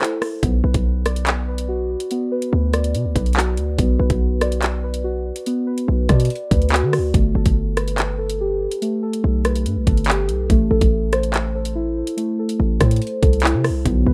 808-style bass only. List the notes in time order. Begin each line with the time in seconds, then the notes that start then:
0.43 B1
0.64 B1
0.74 B1
2.53 D2
2.95 B2
3.05 D2
3.16 B1
3.58 D2
3.79 B1
4.00 B1
4.10 B1
5.88 B1
6.09 B2
6.51 D2
6.83 D3
6.98 D2
7.14 G1
7.35 G1
7.46 G1
9.24 B1
9.66 G2
9.77 B1
9.87 G1
10.29 B1
10.50 A1
10.71 A1
10.81 A1
12.60 A1
12.81 A2
13.23 C2
13.54 C3
13.70 C2
13.86 B1
14.06 B1